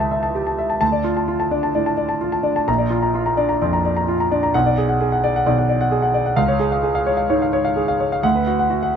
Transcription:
0.00 0.83 C#2 medium
0.00 0.35 G4 medium
0.00 0.11 E5 soft
0.00 0.23 A5 medium
0.11 0.30 E5 soft
0.23 0.42 A5 soft
0.35 0.54 G4 soft
0.47 0.65 A5 soft
0.58 0.77 E5 soft
0.70 0.79 A5 soft
0.81 1.71 D2 medium
0.81 0.99 A5 medium
0.92 1.11 D5 soft
1.04 1.23 F4 soft
1.17 1.35 A5 soft
1.28 1.47 F4 soft
1.40 1.58 A5 soft
1.51 1.70 D4 soft
1.51 1.70 D5 soft
1.63 1.81 A5 soft
1.75 1.93 A2 soft
1.75 1.93 D5 soft
1.86 2.05 A5 soft
1.97 2.16 D5 soft
2.09 2.28 A5 soft
2.21 2.40 F4 soft
2.32 2.51 A5 medium
2.43 2.63 D4 soft
2.43 2.63 D5 soft
2.56 2.68 A5 soft
2.68 3.58 A#1 medium
2.68 2.87 A#5 medium
2.78 2.98 D5 soft
2.90 3.09 F4 soft
3.02 3.21 A#5 soft
3.15 3.33 F4 medium
3.26 3.45 A#5 soft
3.37 3.56 D4 medium
3.37 3.56 D5 medium
3.49 3.68 A#5 soft
3.62 3.80 F2 soft
3.62 3.80 D5 soft
3.73 3.91 A#5 medium
3.85 4.03 D5 soft
3.97 4.15 A#5 medium
4.08 4.27 F4 medium
4.20 4.38 A#5 soft
4.31 4.50 D4 soft
4.31 4.50 D5 medium
4.43 4.54 A#5 medium
4.54 5.43 B1 medium
4.54 4.72 F#5 medium
4.66 4.84 D5 medium
4.78 4.96 G#4 medium
4.89 5.07 F#5 medium
5.01 5.19 G#4 medium
5.12 5.30 F#5 medium
5.24 5.42 D5 medium
5.36 5.53 F#5 medium
5.46 6.35 B1 medium
5.46 5.64 D5 medium
5.58 5.76 F#5 medium
5.69 5.87 D5 soft
5.81 5.99 F#5 medium
5.91 6.10 G#4 medium
6.02 6.21 F#5 medium
6.14 6.33 D5 medium
6.26 6.37 F#5 soft
6.36 7.27 C#2 medium
6.36 6.55 F5 medium
6.48 6.67 C#5 medium
6.60 6.78 G#4 medium
6.72 6.90 F5 medium
6.83 7.02 G#4 medium
6.95 7.14 F5 medium
7.06 7.25 C#5 medium
7.17 7.36 F5 medium
7.30 7.49 G#2 medium
7.30 7.49 C#5 medium
7.42 7.61 F5 medium
7.53 7.72 C#5 medium
7.65 7.84 F5 medium
7.76 7.95 G#4 medium
7.88 8.07 F5 medium
8.00 8.19 C#5 medium
8.12 8.24 F5 medium
8.23 8.96 D2 medium
8.23 8.42 F#5 medium
8.35 8.54 B4 medium
8.47 8.66 F#4 medium
8.59 8.78 F#5 medium
8.70 8.89 F#4 medium
8.83 8.96 F#5 medium

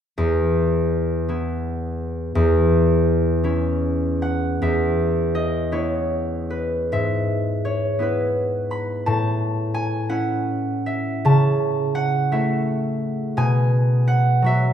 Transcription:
0.18 2.34 E2 medium
1.29 2.37 B3 soft
1.29 3.43 E4 soft
2.35 4.61 E2 medium
3.44 4.67 C#4 soft
3.44 5.71 E4 medium
4.22 4.88 F#5 medium
4.62 6.95 E2 medium
4.62 6.91 E5 medium
5.35 6.00 D#5 medium
5.72 7.98 B3 soft
5.72 7.99 E4 soft
5.72 7.07 C#5 medium
6.50 7.99 B4 medium
6.92 9.09 G#2 medium
6.92 10.83 E5 medium
7.65 8.25 C#5 medium
7.99 9.09 B3 soft
7.99 10.09 E4 soft
7.99 9.09 B4 soft
8.71 9.09 B5 medium
9.06 11.28 A2 medium
9.06 11.24 A5 medium
9.74 10.36 G#5 medium
10.09 13.40 C#4 soft
10.09 12.31 E4 soft
10.09 11.40 F#5 medium
10.86 12.31 E5 medium
11.25 13.40 C#3 medium
11.25 13.40 A5 medium
11.95 12.56 F#5 medium
12.32 13.40 A3 soft
12.32 13.40 E4 soft
12.32 13.40 E5 medium
13.37 14.73 B2 medium
13.37 14.58 G#5 medium
14.08 14.73 F#5 medium
14.42 14.73 F#3 soft
14.42 14.73 F#4 medium
14.46 14.73 E5 medium

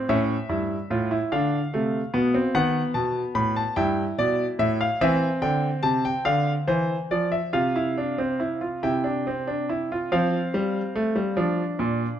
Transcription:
0.09 0.35 A2 medium
0.09 0.35 C#4 medium
0.09 1.29 E5 medium
0.49 0.75 G2 medium
0.49 0.75 E4 medium
0.90 1.16 A2 medium
0.90 1.11 F4 medium
1.11 1.31 E4 medium
1.32 1.58 D3 medium
1.32 1.58 D4 medium
1.32 2.52 F5 medium
1.74 2.00 C3 medium
1.74 1.99 A3 medium
2.14 2.39 B2 medium
2.14 2.34 B3 medium
2.34 2.55 C4 medium
2.55 2.80 D#3 medium
2.55 3.74 B3 medium
2.55 2.80 F#5 medium
2.94 3.20 B2 medium
2.94 3.20 A5 medium
3.35 3.61 A2 medium
3.35 3.56 B5 medium
3.56 3.77 A5 medium
3.76 4.02 G2 medium
3.76 4.97 E4 medium
3.76 4.02 G5 medium
4.18 4.44 B2 medium
4.18 4.44 D5 medium
4.59 4.85 A2 medium
4.59 4.80 E5 medium
4.81 5.01 F5 medium
5.01 5.27 E3 medium
5.01 7.50 C4 medium
5.01 5.27 E5 medium
5.42 5.68 D3 medium
5.42 5.68 G5 medium
5.83 6.10 C3 medium
5.83 6.04 A5 medium
6.05 6.26 G5 medium
6.25 6.52 D3 medium
6.25 6.52 F5 medium
6.67 6.95 E3 medium
6.67 6.94 C5 medium
7.11 7.38 F3 medium
7.11 7.32 D5 medium
7.32 7.53 E5 medium
7.53 8.79 C3 medium
7.53 7.75 F4 medium
7.53 8.79 F5 medium
7.76 7.97 E4 medium
7.98 8.18 D4 medium
8.18 8.40 C4 medium
8.40 8.61 E4 medium
8.61 8.82 F4 medium
8.83 10.08 C3 medium
8.83 9.04 E4 medium
8.83 10.08 G5 medium
9.04 9.25 D4 medium
9.27 9.47 C4 medium
9.47 9.68 D4 medium
9.69 9.90 E4 medium
9.92 10.12 F4 medium
10.12 10.38 F3 medium
10.12 11.34 C4 medium
10.12 12.20 F5 medium
10.54 10.80 G3 medium
10.96 11.16 A3 medium
11.16 11.36 G3 medium
11.37 11.63 F3 medium
11.37 12.20 D4 medium
11.79 12.04 A#2 medium

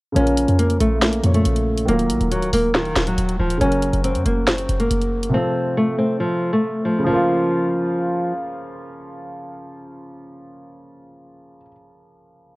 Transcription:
0.12 0.47 A#1 loud
0.12 1.20 C#3 medium
0.12 1.21 F3 medium
0.12 1.22 A#3 medium
0.12 0.56 C#4 loud
0.12 closed hi-hat medium
0.18 1.23 F4 medium
0.18 1.23 A#4 medium
0.27 closed hi-hat medium
0.37 closed hi-hat medium
0.48 0.79 F2 loud
0.48 closed hi-hat medium
0.59 0.77 A#3 medium
0.59 closed hi-hat medium
0.70 closed hi-hat medium
0.80 1.22 A#1 loud
0.80 0.98 A3 medium
0.80 closed hi-hat medium
1.02 1.33 A#3 medium
1.02 snare loud
1.02 closed hi-hat medium
1.13 closed hi-hat medium
1.22 1.44 F2 loud
1.22 1.89 A#2 medium
1.22 1.88 C#3 medium
1.22 1.88 F3 soft
1.22 1.89 F4 soft
1.22 1.90 C#5 medium
1.22 closed hi-hat medium
1.34 1.85 A3 medium
1.34 closed hi-hat medium
1.45 1.87 A#1 loud
1.45 closed hi-hat medium
1.56 closed hi-hat medium
1.78 closed hi-hat medium
1.85 2.12 D#1 loud
1.85 3.56 D#3 medium
1.85 3.57 F#3 medium
1.85 2.29 A#3 loud
1.85 3.58 A#3 medium
1.85 closed hi-hat medium
1.91 3.59 F4 medium
1.91 3.60 A#4 medium
1.99 closed hi-hat medium
2.10 2.20 A#1 loud
2.10 closed hi-hat medium
2.21 2.44 D#1 loud
2.21 closed hi-hat medium
2.32 2.49 F#3 medium
2.32 closed hi-hat medium
2.42 2.53 C#1 medium
2.42 closed hi-hat medium
2.53 2.95 D#1 loud
2.53 2.71 A#3 medium
2.53 open hi-hat medium
2.75 3.05 D#3 medium
2.75 snare loud
2.75 closed hi-hat medium
2.85 closed hi-hat medium
2.96 3.17 D#1 loud
2.96 snare loud
2.96 closed hi-hat medium
3.07 3.38 F#3 medium
3.07 closed hi-hat medium
3.18 3.39 D#1 loud
3.18 closed hi-hat medium
3.29 closed hi-hat medium
3.39 3.60 D#1 loud
3.39 3.57 F3 medium
3.50 closed hi-hat medium
3.58 3.92 F#1 loud
3.58 5.29 C#3 medium
3.58 5.30 F#3 medium
3.58 5.31 A#3 medium
3.58 4.02 C#4 loud
3.58 closed hi-hat medium
3.64 5.32 F#4 medium
3.64 5.33 A#4 medium
3.72 closed hi-hat medium
3.82 closed hi-hat medium
3.93 4.17 F#1 loud
3.93 closed hi-hat medium
4.04 4.22 C4 medium
4.04 closed hi-hat medium
4.15 4.25 F#2 loud
4.15 closed hi-hat medium
4.26 4.67 F#1 loud
4.26 4.44 A#3 medium
4.26 closed hi-hat medium
4.47 4.78 C4 medium
4.47 snare loud
4.47 closed hi-hat medium
4.58 closed hi-hat medium
4.69 4.90 F#1 loud
4.69 closed hi-hat medium
4.80 5.30 A#3 medium
4.80 closed hi-hat medium
4.91 5.32 F#1 loud
4.91 closed hi-hat medium
5.01 closed hi-hat medium
5.23 closed hi-hat medium
5.29 7.01 C3 medium
5.29 7.02 F3 medium
5.29 7.03 A3 medium
5.34 5.74 C4 loud
5.34 7.04 F4 medium
5.34 7.05 A4 medium
5.77 5.95 A3 medium
5.98 6.16 C4 medium
6.20 6.50 F3 medium
6.53 6.83 A3 medium
6.85 7.03 F3 medium
6.99 11.56 C#3 medium
7.04 11.61 F3 medium
7.04 8.32 F3 medium
7.09 11.66 A#3 medium
7.14 11.72 F4 medium

